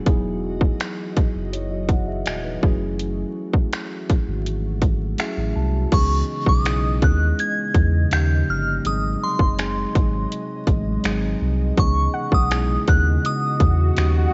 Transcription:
Already playing: F#3 F#4
0.05 E1 E3 F#3 B3 D#4 E4 G#4 D#5, kick, closed hi-hat
0.61 kick
0.80 finger snap, closed hi-hat
1.17 F#1, kick, closed hi-hat
1.35 F#1
1.53 E4 C#5, closed hi-hat
1.71 F#4 D#5
1.89 F#5, kick, closed hi-hat
2.08 G#4 E5
2.26 D#1 F#4 D#5, finger snap, closed hi-hat
2.44 D#4 B4
2.61 F#1 F#3 A3 C#4 E4 G#4, kick
2.99 closed hi-hat
3.54 kick
3.73 finger snap, closed hi-hat
4.10 G#1, kick, closed hi-hat
4.28 G#1
4.46 closed hi-hat
4.82 kick, closed hi-hat
5.18 F#3 A3 C#4 E4 G#4 E5, finger snap, closed hi-hat
5.37 A1
5.56 C2 A5
5.91 C#2 C#3 E3 G#3 B3 C#4 D#4 G#4 D#5 C#6, kick, closed hi-hat, crash
6.46 B1 D#6, kick
6.64 B3 C#4 D#4 E4 G#4, finger snap, closed hi-hat
7.02 D#2 F#6, kick, closed hi-hat
7.39 G#6, closed hi-hat
7.74 E2, kick, closed hi-hat
8.10 D#2 F3 G3 A#3 C#4 D#4 G4 G6, finger snap, closed hi-hat
8.49 G1 F6
8.84 G#1 C3 F#3 G#3 C4 D#4 G#4 D#5 D#6, closed hi-hat
9.24 C6
9.39 F#1, kick
9.57 F#3 G#3 C4 D#4 G#4, finger snap, closed hi-hat
9.95 G#1, kick, closed hi-hat
10.32 closed hi-hat
10.67 A1, kick, closed hi-hat
11.03 G#1 C3 F#3 G#3 B3 D#4 G#4, finger snap, closed hi-hat
11.11 C4
11.41 C2
11.76 C#2 C#3 E3 G#3 B3 C#4 D#4 G#4 C#6, kick, closed hi-hat, swell
12.14 F#5
12.32 B1 D#6, kick
12.50 B3 C#4 D#4 E4 G#4, finger snap, closed hi-hat
12.88 D#2 F#6, kick, closed hi-hat
13.25 D#6, closed hi-hat
13.60 E2, kick, closed hi-hat
13.96 D#2 F3 G3 A#3 C#4 D#4 G4, finger snap, closed hi-hat

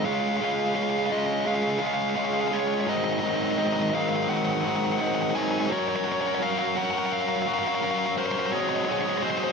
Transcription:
0.04 C#3 G#3 C#4 F4 F5
0.14 F5
0.20 F5
0.29 F5
0.37 C#3 G#3 F5
0.41 C#4 F4 F5
0.51 F5
0.59 F5
0.67 F5
0.74 C#3 G#3 C#4 F4 F5
0.83 F5
0.90 F5
0.99 F5
1.06 C#3 F5
1.10 G#3 C#4 F4 D#5
1.19 D#5
1.26 D#5
1.33 D#5
1.41 D#5
1.45 C#3 G#3 C#4 F4 F5
1.55 F5
1.62 F5
1.70 F5
1.79 C#3 G#3 C#4 F4 F5
1.86 F5
1.94 F5
2.02 F5
2.10 F5
2.15 C#3 G#3 C#4 F4 F5
2.25 F5
2.33 F5
2.41 F5
2.48 C#3 F5
2.52 G#3 C#4 F4 C#5
2.60 C#5
2.67 C#5
2.74 C#5
2.81 C#5
2.86 G#2 D#3 F#3 C4 D#4 D#5
2.97 D#5
3.04 D#5
3.12 D#5
3.19 G#2 D#3 F#3 D#5
3.24 C4 D#4
3.29 D#5
3.36 D#5
3.43 D#5
3.51 D#5
3.57 G#2 D#3 F#3 C4 D#4 D#5
3.67 D#5
3.73 D#5
3.82 D#5
3.90 G#2 D#3 D#5
3.94 F#3 C4 D#4 F5
4.01 F5
4.09 F5
4.16 F5
4.22 F5
4.28 G#2 D#3 F#3 C4 D#4 F#5
4.37 F#5
4.45 F#5
4.52 F#5
4.61 G#2 D#3 F#3 C4 F#5
4.65 D#4 F#5
4.76 F#5
4.85 F#5
4.92 F#5
4.99 G#2 D#3 F#3 C4 D#4 F#5
5.07 F#5
5.15 F#5
5.22 F#5
5.31 G#2 D#3 F#5
5.35 F#3 C4 D#4 C5 G#5
5.43 C5 G#5
5.50 C5 G#5
5.58 C5 G#5
5.65 C5
5.70 F#3 C#4 F#4 A#4 C#5
5.79 C#5
5.88 C#5
5.96 C#5
6.04 C#4 F#4 A#4 C#5
6.08 C#5
6.21 A#4 C#5
6.26 F#4 C#5
6.35 C#5
6.40 F#3 C#4 F#4 A#4 C#5 F5
6.50 F5
6.57 F#4 A#4 C#5 F5
6.66 F5
6.75 C#4 F#4 A#4 C#5 F#5
6.85 F#5
6.91 C#5 F#5
6.95 F#4 A#4 F#5
7.06 F#5
7.13 F5
7.21 F5
7.29 F5
7.36 F5
7.42 C#4 F5
7.47 F#4 A#4 C#5
7.54 F5
7.59 F5
7.63 F#4 A#4 C#5
7.68 F5
7.75 F5
7.81 F#3 C#4 F#4 A#4 C#5 F5
7.91 F5
7.98 F5
8.06 F5
8.16 C#4 F#4 A#4 C5 C#5
8.26 C5
8.31 C5 C#5
8.36 F#4 A#4 C5
8.46 C5
8.51 F#3 C4 F#4 G#4 C#5 D#5
8.60 C#5
8.69 C#5
8.76 C#5
8.85 C4 F#4 C#5
8.89 G#4 C#5 D#5
9.01 C#5 D#5
9.06 F#4 G#4 C#5
9.18 C#5
9.22 F#3 C4 F#4 G#4 C5 D#5
9.30 C5
9.38 G#4 C5 D#5
9.43 F#4 C5

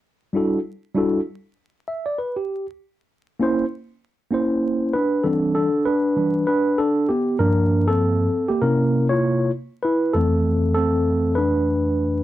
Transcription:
0.33 G3 D4 E4 F#4 A4
0.94 G3 D4 E4 F#4 A4
1.88 E5
2.06 D5
2.18 B4
2.36 G4
3.39 A#3 C#4 E4 C5
4.31 A#3 C#4 E4 C5
4.93 D4 B4
5.24 E3 G3 C4 D4 A4
5.55 D4 A4
5.85 D4 B4
6.16 E3 G3 D4
6.47 D4 B4
6.78 D4 A4
7.09 B3 G4
7.39 G2 F3 A#3 D4 A#4
7.88 C4 A4
8.48 A#3 G4
8.61 C3 A#3 C#4 E4 A#4
9.09 F4 C#5
9.83 E4 B4
10.13 F2 E3 A3 C4 A4
10.74 C4 A4
11.35 D4 B4

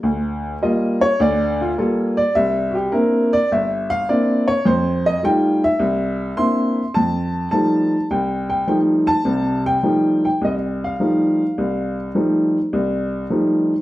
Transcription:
0.03 D2
0.62 G3 A#3 F4 D#5
1.01 C#5
1.20 D2 D3 D5
1.61 F4
1.78 G3 A#3 F4 A4
2.17 D5
2.35 C2 E5
2.71 F#4
2.75 G4
2.92 A#3 C4 D4 E4 A#4
3.33 D5
3.52 G1 E5
3.90 F5
4.09 A#3 C4 D4 E4 D5
4.48 C#5
4.65 F2 C5
5.06 D#5
5.23 G3 A3 D#4 F4 G5
5.64 E5
5.79 C2
6.37 A#3 C4 D4 E4 C6
6.94 F2 A5
7.51 F3 G3 A3 D#4 A5
8.11 C2 G5
8.50 G5
8.67 F3 G3 A3 D#4 G5
9.07 A5
9.25 C2 C3
9.66 G5
9.83 F3 G3 A3 D#4
10.25 G5
10.41 C2 D#5
10.84 F5
11.00 F3 G3 A3 D#4
11.58 C2
12.15 F3 G3 A3 D#4
12.73 C2
13.30 F3 G3 A3 D#4

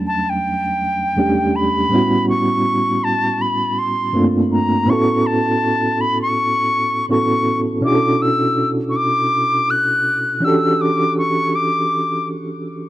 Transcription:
Already playing: E2 F#3 G3 A3 C#4 D4
0.07 A5
0.29 G5
1.17 E2 G3 A3 C#4 D4 G4
1.56 B5
1.89 A2 G3 B3
1.93 C#4 E4 F#4
2.29 C#6
3.04 A5
3.41 B5
3.79 C6
4.13 G2 A3 A#3 C4 D4 F4
4.52 A#5
4.85 A2 B3 C#4
4.90 E4 F#4 A4 C#6
5.26 A5
6.01 B5
6.22 C#6
7.08 A2 B3 C#4 E4 F#4 A4 C#6
7.81 B2 C#4 D4
7.85 E4 F#4 G#4 D6
7.95 A4
8.22 E6
8.90 C#6
8.96 D6
9.70 F#6
10.40 E3 C#4 D4
10.44 F#4 G4 A4 E6
10.81 D6
11.18 C#6
11.55 D6

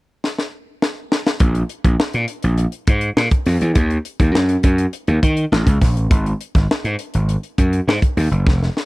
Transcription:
0.24 snare
0.39 snare
0.82 snare
1.12 snare
1.27 snare
1.40 A#1, kick, closed hi-hat
1.55 closed hi-hat
1.69 closed hi-hat
1.84 A#1, kick, closed hi-hat
2.00 snare
2.13 A#2, closed hi-hat
2.28 closed hi-hat
2.42 A#1, closed hi-hat
2.58 closed hi-hat
2.72 closed hi-hat
2.87 G#2, kick, closed hi-hat
3.01 closed hi-hat
3.17 A#2, snare
3.31 kick, closed hi-hat
3.46 F2, snare, open hi-hat
3.61 E2, closed hi-hat
3.75 D#2, kick, closed hi-hat
3.90 closed hi-hat
4.05 closed hi-hat
4.20 D#2, kick, closed hi-hat
4.35 F#2, snare
4.49 closed hi-hat
4.63 F#2, kick, closed hi-hat
4.78 closed hi-hat
4.93 closed hi-hat
5.07 D#2, closed hi-hat
5.23 D#3, kick, closed hi-hat
5.37 closed hi-hat
5.52 A1, snare
5.67 C#2, kick, closed hi-hat
5.81 A#1, kick, snare, open hi-hat
5.96 A1, closed hi-hat
6.11 G#1, kick, closed hi-hat
6.26 closed hi-hat
6.41 closed hi-hat
6.55 G#1, kick, snare, closed hi-hat
6.70 muted slap bass stroke, snare
6.84 G#2, closed hi-hat
6.99 closed hi-hat
7.14 G#1, closed hi-hat
7.29 closed hi-hat
7.43 closed hi-hat
7.58 F#2, kick, closed hi-hat
7.73 closed hi-hat
7.88 G#2, snare
8.02 kick, closed hi-hat
8.17 D#2, snare, open hi-hat
8.31 F#1, closed hi-hat
8.47 F1, kick, snare
8.63 snare
8.77 snare

